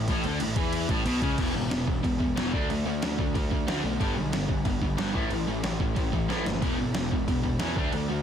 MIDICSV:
0, 0, Header, 1, 4, 480
1, 0, Start_track
1, 0, Tempo, 327154
1, 114, Time_signature, 4, 2, 24, 8
1, 12066, End_track
2, 0, Start_track
2, 0, Title_t, "Distorted electric guitar"
2, 0, Program_c, 0, 30
2, 127, Note_on_c, 0, 45, 114
2, 353, Note_off_c, 0, 45, 0
2, 374, Note_on_c, 0, 50, 115
2, 594, Note_off_c, 0, 50, 0
2, 600, Note_on_c, 0, 45, 81
2, 788, Note_off_c, 0, 45, 0
2, 830, Note_on_c, 0, 52, 105
2, 1303, Note_off_c, 0, 52, 0
2, 1316, Note_on_c, 0, 45, 103
2, 1535, Note_off_c, 0, 45, 0
2, 1540, Note_on_c, 0, 47, 115
2, 1779, Note_off_c, 0, 47, 0
2, 1793, Note_on_c, 0, 49, 101
2, 2020, Note_on_c, 0, 40, 95
2, 2025, Note_off_c, 0, 49, 0
2, 2032, Note_on_c, 0, 47, 91
2, 2040, Note_on_c, 0, 52, 107
2, 2245, Note_off_c, 0, 40, 0
2, 2247, Note_off_c, 0, 47, 0
2, 2261, Note_off_c, 0, 52, 0
2, 2262, Note_on_c, 0, 40, 70
2, 2265, Note_on_c, 0, 47, 76
2, 2479, Note_off_c, 0, 40, 0
2, 2484, Note_off_c, 0, 47, 0
2, 2496, Note_on_c, 0, 40, 79
2, 2506, Note_on_c, 0, 47, 86
2, 2720, Note_off_c, 0, 40, 0
2, 2724, Note_off_c, 0, 47, 0
2, 2744, Note_on_c, 0, 40, 67
2, 2747, Note_on_c, 0, 47, 76
2, 2960, Note_off_c, 0, 40, 0
2, 2965, Note_off_c, 0, 47, 0
2, 2978, Note_on_c, 0, 40, 74
2, 2983, Note_on_c, 0, 47, 82
2, 3195, Note_off_c, 0, 40, 0
2, 3203, Note_off_c, 0, 47, 0
2, 3213, Note_on_c, 0, 40, 68
2, 3225, Note_on_c, 0, 47, 75
2, 3438, Note_off_c, 0, 40, 0
2, 3444, Note_off_c, 0, 47, 0
2, 3457, Note_on_c, 0, 40, 90
2, 3467, Note_on_c, 0, 47, 93
2, 3473, Note_on_c, 0, 52, 101
2, 3689, Note_off_c, 0, 40, 0
2, 3694, Note_off_c, 0, 47, 0
2, 3697, Note_off_c, 0, 52, 0
2, 3705, Note_on_c, 0, 50, 80
2, 3714, Note_on_c, 0, 57, 85
2, 3717, Note_on_c, 0, 62, 95
2, 3933, Note_off_c, 0, 50, 0
2, 3938, Note_off_c, 0, 57, 0
2, 3939, Note_off_c, 0, 62, 0
2, 3954, Note_on_c, 0, 50, 82
2, 3961, Note_on_c, 0, 57, 82
2, 4168, Note_off_c, 0, 50, 0
2, 4172, Note_off_c, 0, 57, 0
2, 4184, Note_on_c, 0, 50, 71
2, 4191, Note_on_c, 0, 57, 86
2, 4403, Note_off_c, 0, 50, 0
2, 4407, Note_off_c, 0, 57, 0
2, 4431, Note_on_c, 0, 50, 83
2, 4437, Note_on_c, 0, 57, 96
2, 4647, Note_off_c, 0, 50, 0
2, 4650, Note_off_c, 0, 57, 0
2, 4669, Note_on_c, 0, 50, 75
2, 4675, Note_on_c, 0, 57, 78
2, 4886, Note_off_c, 0, 50, 0
2, 4889, Note_off_c, 0, 57, 0
2, 4912, Note_on_c, 0, 50, 75
2, 4921, Note_on_c, 0, 57, 91
2, 5127, Note_off_c, 0, 50, 0
2, 5132, Note_off_c, 0, 57, 0
2, 5148, Note_on_c, 0, 50, 62
2, 5156, Note_on_c, 0, 57, 78
2, 5365, Note_off_c, 0, 50, 0
2, 5369, Note_off_c, 0, 57, 0
2, 5391, Note_on_c, 0, 50, 93
2, 5395, Note_on_c, 0, 57, 98
2, 5405, Note_on_c, 0, 62, 108
2, 5607, Note_off_c, 0, 50, 0
2, 5618, Note_off_c, 0, 57, 0
2, 5623, Note_off_c, 0, 62, 0
2, 5625, Note_on_c, 0, 50, 74
2, 5633, Note_on_c, 0, 57, 83
2, 5843, Note_off_c, 0, 50, 0
2, 5848, Note_off_c, 0, 57, 0
2, 5870, Note_on_c, 0, 43, 90
2, 5877, Note_on_c, 0, 50, 93
2, 5887, Note_on_c, 0, 55, 105
2, 6096, Note_off_c, 0, 43, 0
2, 6099, Note_off_c, 0, 50, 0
2, 6104, Note_off_c, 0, 55, 0
2, 6111, Note_on_c, 0, 43, 75
2, 6118, Note_on_c, 0, 50, 80
2, 6327, Note_off_c, 0, 43, 0
2, 6330, Note_off_c, 0, 50, 0
2, 6352, Note_on_c, 0, 43, 75
2, 6356, Note_on_c, 0, 50, 94
2, 6567, Note_off_c, 0, 43, 0
2, 6569, Note_off_c, 0, 50, 0
2, 6590, Note_on_c, 0, 43, 67
2, 6592, Note_on_c, 0, 50, 78
2, 6806, Note_off_c, 0, 43, 0
2, 6807, Note_off_c, 0, 50, 0
2, 6825, Note_on_c, 0, 43, 81
2, 6834, Note_on_c, 0, 50, 82
2, 7044, Note_off_c, 0, 43, 0
2, 7048, Note_off_c, 0, 50, 0
2, 7066, Note_on_c, 0, 43, 68
2, 7075, Note_on_c, 0, 50, 82
2, 7275, Note_off_c, 0, 43, 0
2, 7289, Note_off_c, 0, 50, 0
2, 7293, Note_on_c, 0, 43, 91
2, 7304, Note_on_c, 0, 50, 100
2, 7308, Note_on_c, 0, 55, 96
2, 7526, Note_off_c, 0, 50, 0
2, 7527, Note_off_c, 0, 43, 0
2, 7532, Note_on_c, 0, 45, 85
2, 7535, Note_off_c, 0, 55, 0
2, 7542, Note_on_c, 0, 52, 95
2, 7550, Note_on_c, 0, 57, 92
2, 7761, Note_off_c, 0, 45, 0
2, 7772, Note_off_c, 0, 52, 0
2, 7776, Note_off_c, 0, 57, 0
2, 7778, Note_on_c, 0, 45, 82
2, 7787, Note_on_c, 0, 52, 91
2, 8000, Note_off_c, 0, 45, 0
2, 8005, Note_off_c, 0, 52, 0
2, 8026, Note_on_c, 0, 45, 72
2, 8030, Note_on_c, 0, 52, 81
2, 8244, Note_off_c, 0, 45, 0
2, 8246, Note_off_c, 0, 52, 0
2, 8266, Note_on_c, 0, 45, 77
2, 8268, Note_on_c, 0, 52, 91
2, 8484, Note_off_c, 0, 45, 0
2, 8485, Note_off_c, 0, 52, 0
2, 8518, Note_on_c, 0, 45, 69
2, 8521, Note_on_c, 0, 52, 80
2, 8730, Note_off_c, 0, 45, 0
2, 8732, Note_off_c, 0, 52, 0
2, 8746, Note_on_c, 0, 45, 83
2, 8753, Note_on_c, 0, 52, 92
2, 8964, Note_off_c, 0, 45, 0
2, 8968, Note_off_c, 0, 52, 0
2, 8995, Note_on_c, 0, 45, 66
2, 9000, Note_on_c, 0, 52, 74
2, 9209, Note_off_c, 0, 45, 0
2, 9212, Note_off_c, 0, 52, 0
2, 9229, Note_on_c, 0, 45, 92
2, 9239, Note_on_c, 0, 52, 98
2, 9242, Note_on_c, 0, 57, 96
2, 9455, Note_off_c, 0, 45, 0
2, 9461, Note_off_c, 0, 52, 0
2, 9462, Note_off_c, 0, 57, 0
2, 9473, Note_on_c, 0, 45, 76
2, 9487, Note_on_c, 0, 52, 72
2, 9688, Note_off_c, 0, 45, 0
2, 9695, Note_off_c, 0, 52, 0
2, 9708, Note_on_c, 0, 40, 92
2, 9713, Note_on_c, 0, 47, 89
2, 9726, Note_on_c, 0, 52, 104
2, 9932, Note_off_c, 0, 47, 0
2, 9935, Note_off_c, 0, 40, 0
2, 9944, Note_off_c, 0, 52, 0
2, 9950, Note_on_c, 0, 47, 87
2, 9952, Note_on_c, 0, 40, 67
2, 10167, Note_off_c, 0, 47, 0
2, 10168, Note_off_c, 0, 40, 0
2, 10190, Note_on_c, 0, 40, 78
2, 10198, Note_on_c, 0, 47, 84
2, 10407, Note_off_c, 0, 40, 0
2, 10411, Note_off_c, 0, 47, 0
2, 10438, Note_on_c, 0, 40, 68
2, 10444, Note_on_c, 0, 47, 81
2, 10650, Note_off_c, 0, 40, 0
2, 10653, Note_off_c, 0, 47, 0
2, 10678, Note_on_c, 0, 40, 80
2, 10684, Note_on_c, 0, 47, 87
2, 10891, Note_off_c, 0, 40, 0
2, 10894, Note_off_c, 0, 47, 0
2, 10907, Note_on_c, 0, 40, 68
2, 10909, Note_on_c, 0, 47, 85
2, 11122, Note_off_c, 0, 40, 0
2, 11126, Note_off_c, 0, 47, 0
2, 11139, Note_on_c, 0, 40, 94
2, 11142, Note_on_c, 0, 47, 105
2, 11151, Note_on_c, 0, 52, 112
2, 11371, Note_off_c, 0, 40, 0
2, 11373, Note_off_c, 0, 47, 0
2, 11377, Note_off_c, 0, 52, 0
2, 11380, Note_on_c, 0, 50, 84
2, 11386, Note_on_c, 0, 57, 97
2, 11400, Note_on_c, 0, 62, 101
2, 11612, Note_off_c, 0, 50, 0
2, 11615, Note_off_c, 0, 57, 0
2, 11622, Note_off_c, 0, 62, 0
2, 11629, Note_on_c, 0, 50, 78
2, 11632, Note_on_c, 0, 57, 84
2, 11843, Note_off_c, 0, 50, 0
2, 11848, Note_off_c, 0, 57, 0
2, 11861, Note_on_c, 0, 50, 73
2, 11868, Note_on_c, 0, 57, 83
2, 12066, Note_off_c, 0, 50, 0
2, 12066, Note_off_c, 0, 57, 0
2, 12066, End_track
3, 0, Start_track
3, 0, Title_t, "Picked electric bass"
3, 0, Program_c, 1, 34
3, 111, Note_on_c, 1, 33, 104
3, 335, Note_off_c, 1, 33, 0
3, 362, Note_on_c, 1, 38, 105
3, 581, Note_off_c, 1, 38, 0
3, 599, Note_on_c, 1, 33, 75
3, 819, Note_off_c, 1, 33, 0
3, 827, Note_on_c, 1, 40, 101
3, 1275, Note_off_c, 1, 40, 0
3, 1308, Note_on_c, 1, 33, 94
3, 1533, Note_off_c, 1, 33, 0
3, 1555, Note_on_c, 1, 35, 93
3, 1777, Note_off_c, 1, 35, 0
3, 1790, Note_on_c, 1, 37, 92
3, 2014, Note_off_c, 1, 37, 0
3, 2031, Note_on_c, 1, 28, 95
3, 2242, Note_off_c, 1, 28, 0
3, 2276, Note_on_c, 1, 32, 88
3, 2484, Note_off_c, 1, 32, 0
3, 2508, Note_on_c, 1, 28, 82
3, 2720, Note_off_c, 1, 28, 0
3, 2757, Note_on_c, 1, 28, 96
3, 2965, Note_off_c, 1, 28, 0
3, 2990, Note_on_c, 1, 28, 84
3, 3412, Note_off_c, 1, 28, 0
3, 3475, Note_on_c, 1, 28, 86
3, 3684, Note_off_c, 1, 28, 0
3, 3719, Note_on_c, 1, 38, 81
3, 3926, Note_off_c, 1, 38, 0
3, 3959, Note_on_c, 1, 38, 93
3, 4166, Note_off_c, 1, 38, 0
3, 4195, Note_on_c, 1, 38, 98
3, 4404, Note_off_c, 1, 38, 0
3, 4444, Note_on_c, 1, 38, 85
3, 4649, Note_off_c, 1, 38, 0
3, 4680, Note_on_c, 1, 38, 91
3, 4887, Note_off_c, 1, 38, 0
3, 4923, Note_on_c, 1, 38, 92
3, 5128, Note_off_c, 1, 38, 0
3, 5159, Note_on_c, 1, 38, 82
3, 5366, Note_off_c, 1, 38, 0
3, 5390, Note_on_c, 1, 38, 84
3, 5601, Note_off_c, 1, 38, 0
3, 5630, Note_on_c, 1, 35, 83
3, 5841, Note_off_c, 1, 35, 0
3, 5874, Note_on_c, 1, 31, 97
3, 6083, Note_off_c, 1, 31, 0
3, 6113, Note_on_c, 1, 35, 92
3, 6322, Note_off_c, 1, 35, 0
3, 6348, Note_on_c, 1, 31, 80
3, 6560, Note_off_c, 1, 31, 0
3, 6592, Note_on_c, 1, 31, 92
3, 6802, Note_off_c, 1, 31, 0
3, 6828, Note_on_c, 1, 31, 94
3, 7250, Note_off_c, 1, 31, 0
3, 7310, Note_on_c, 1, 31, 89
3, 7553, Note_off_c, 1, 31, 0
3, 7553, Note_on_c, 1, 33, 91
3, 7763, Note_off_c, 1, 33, 0
3, 7791, Note_on_c, 1, 33, 99
3, 8001, Note_off_c, 1, 33, 0
3, 8029, Note_on_c, 1, 33, 89
3, 8240, Note_off_c, 1, 33, 0
3, 8266, Note_on_c, 1, 33, 80
3, 8479, Note_off_c, 1, 33, 0
3, 8513, Note_on_c, 1, 33, 94
3, 8722, Note_off_c, 1, 33, 0
3, 8755, Note_on_c, 1, 33, 92
3, 8964, Note_off_c, 1, 33, 0
3, 8997, Note_on_c, 1, 33, 80
3, 9205, Note_off_c, 1, 33, 0
3, 9231, Note_on_c, 1, 33, 87
3, 9441, Note_off_c, 1, 33, 0
3, 9479, Note_on_c, 1, 30, 86
3, 9686, Note_off_c, 1, 30, 0
3, 9720, Note_on_c, 1, 28, 95
3, 9927, Note_off_c, 1, 28, 0
3, 9962, Note_on_c, 1, 32, 84
3, 10168, Note_off_c, 1, 32, 0
3, 10208, Note_on_c, 1, 28, 88
3, 10411, Note_off_c, 1, 28, 0
3, 10436, Note_on_c, 1, 28, 92
3, 10645, Note_off_c, 1, 28, 0
3, 10678, Note_on_c, 1, 28, 89
3, 11096, Note_off_c, 1, 28, 0
3, 11166, Note_on_c, 1, 40, 87
3, 11371, Note_off_c, 1, 40, 0
3, 11395, Note_on_c, 1, 38, 88
3, 11605, Note_off_c, 1, 38, 0
3, 11641, Note_on_c, 1, 38, 90
3, 11848, Note_off_c, 1, 38, 0
3, 11876, Note_on_c, 1, 38, 89
3, 12066, Note_off_c, 1, 38, 0
3, 12066, End_track
4, 0, Start_track
4, 0, Title_t, "Drums"
4, 112, Note_on_c, 9, 36, 104
4, 113, Note_on_c, 9, 49, 78
4, 259, Note_off_c, 9, 36, 0
4, 260, Note_off_c, 9, 49, 0
4, 347, Note_on_c, 9, 49, 60
4, 493, Note_off_c, 9, 49, 0
4, 587, Note_on_c, 9, 49, 84
4, 733, Note_off_c, 9, 49, 0
4, 819, Note_on_c, 9, 49, 73
4, 823, Note_on_c, 9, 36, 117
4, 966, Note_off_c, 9, 49, 0
4, 970, Note_off_c, 9, 36, 0
4, 1065, Note_on_c, 9, 49, 88
4, 1211, Note_off_c, 9, 49, 0
4, 1304, Note_on_c, 9, 49, 70
4, 1306, Note_on_c, 9, 36, 113
4, 1451, Note_off_c, 9, 49, 0
4, 1452, Note_off_c, 9, 36, 0
4, 1550, Note_on_c, 9, 49, 94
4, 1697, Note_off_c, 9, 49, 0
4, 1785, Note_on_c, 9, 36, 101
4, 1786, Note_on_c, 9, 49, 70
4, 1932, Note_off_c, 9, 36, 0
4, 1932, Note_off_c, 9, 49, 0
4, 2024, Note_on_c, 9, 49, 58
4, 2024, Note_on_c, 9, 57, 111
4, 2025, Note_on_c, 9, 36, 104
4, 2171, Note_off_c, 9, 49, 0
4, 2171, Note_off_c, 9, 57, 0
4, 2172, Note_off_c, 9, 36, 0
4, 2511, Note_on_c, 9, 49, 50
4, 2515, Note_on_c, 9, 38, 101
4, 2658, Note_off_c, 9, 49, 0
4, 2662, Note_off_c, 9, 38, 0
4, 2752, Note_on_c, 9, 36, 82
4, 2898, Note_off_c, 9, 36, 0
4, 2992, Note_on_c, 9, 36, 109
4, 2998, Note_on_c, 9, 49, 57
4, 3139, Note_off_c, 9, 36, 0
4, 3145, Note_off_c, 9, 49, 0
4, 3233, Note_on_c, 9, 36, 79
4, 3380, Note_off_c, 9, 36, 0
4, 3480, Note_on_c, 9, 49, 53
4, 3485, Note_on_c, 9, 38, 109
4, 3627, Note_off_c, 9, 49, 0
4, 3631, Note_off_c, 9, 38, 0
4, 3717, Note_on_c, 9, 36, 102
4, 3864, Note_off_c, 9, 36, 0
4, 3961, Note_on_c, 9, 49, 57
4, 4108, Note_off_c, 9, 49, 0
4, 4436, Note_on_c, 9, 49, 56
4, 4440, Note_on_c, 9, 38, 104
4, 4582, Note_off_c, 9, 49, 0
4, 4587, Note_off_c, 9, 38, 0
4, 4676, Note_on_c, 9, 36, 90
4, 4823, Note_off_c, 9, 36, 0
4, 4918, Note_on_c, 9, 36, 108
4, 4919, Note_on_c, 9, 49, 59
4, 5064, Note_off_c, 9, 36, 0
4, 5066, Note_off_c, 9, 49, 0
4, 5156, Note_on_c, 9, 36, 78
4, 5303, Note_off_c, 9, 36, 0
4, 5400, Note_on_c, 9, 49, 65
4, 5404, Note_on_c, 9, 38, 112
4, 5547, Note_off_c, 9, 49, 0
4, 5551, Note_off_c, 9, 38, 0
4, 5872, Note_on_c, 9, 36, 107
4, 5877, Note_on_c, 9, 49, 58
4, 6019, Note_off_c, 9, 36, 0
4, 6024, Note_off_c, 9, 49, 0
4, 6352, Note_on_c, 9, 49, 58
4, 6356, Note_on_c, 9, 38, 102
4, 6498, Note_off_c, 9, 49, 0
4, 6503, Note_off_c, 9, 38, 0
4, 6588, Note_on_c, 9, 36, 97
4, 6735, Note_off_c, 9, 36, 0
4, 6824, Note_on_c, 9, 49, 57
4, 6826, Note_on_c, 9, 36, 107
4, 6971, Note_off_c, 9, 49, 0
4, 6973, Note_off_c, 9, 36, 0
4, 7066, Note_on_c, 9, 36, 83
4, 7212, Note_off_c, 9, 36, 0
4, 7310, Note_on_c, 9, 49, 61
4, 7314, Note_on_c, 9, 38, 123
4, 7456, Note_off_c, 9, 49, 0
4, 7461, Note_off_c, 9, 38, 0
4, 7548, Note_on_c, 9, 36, 95
4, 7694, Note_off_c, 9, 36, 0
4, 7783, Note_on_c, 9, 49, 56
4, 7930, Note_off_c, 9, 49, 0
4, 8268, Note_on_c, 9, 49, 50
4, 8272, Note_on_c, 9, 38, 105
4, 8414, Note_off_c, 9, 49, 0
4, 8419, Note_off_c, 9, 38, 0
4, 8511, Note_on_c, 9, 36, 82
4, 8657, Note_off_c, 9, 36, 0
4, 8748, Note_on_c, 9, 49, 56
4, 8752, Note_on_c, 9, 36, 113
4, 8895, Note_off_c, 9, 49, 0
4, 8899, Note_off_c, 9, 36, 0
4, 8996, Note_on_c, 9, 36, 82
4, 9143, Note_off_c, 9, 36, 0
4, 9244, Note_on_c, 9, 38, 67
4, 9391, Note_off_c, 9, 38, 0
4, 9484, Note_on_c, 9, 38, 83
4, 9630, Note_off_c, 9, 38, 0
4, 9715, Note_on_c, 9, 36, 108
4, 9717, Note_on_c, 9, 49, 64
4, 9862, Note_off_c, 9, 36, 0
4, 9863, Note_off_c, 9, 49, 0
4, 10187, Note_on_c, 9, 49, 57
4, 10192, Note_on_c, 9, 38, 102
4, 10334, Note_off_c, 9, 49, 0
4, 10338, Note_off_c, 9, 38, 0
4, 10437, Note_on_c, 9, 36, 91
4, 10584, Note_off_c, 9, 36, 0
4, 10677, Note_on_c, 9, 36, 110
4, 10681, Note_on_c, 9, 49, 62
4, 10824, Note_off_c, 9, 36, 0
4, 10827, Note_off_c, 9, 49, 0
4, 10915, Note_on_c, 9, 36, 78
4, 11062, Note_off_c, 9, 36, 0
4, 11141, Note_on_c, 9, 49, 66
4, 11146, Note_on_c, 9, 38, 115
4, 11288, Note_off_c, 9, 49, 0
4, 11292, Note_off_c, 9, 38, 0
4, 11390, Note_on_c, 9, 36, 103
4, 11537, Note_off_c, 9, 36, 0
4, 11626, Note_on_c, 9, 49, 51
4, 11773, Note_off_c, 9, 49, 0
4, 12066, End_track
0, 0, End_of_file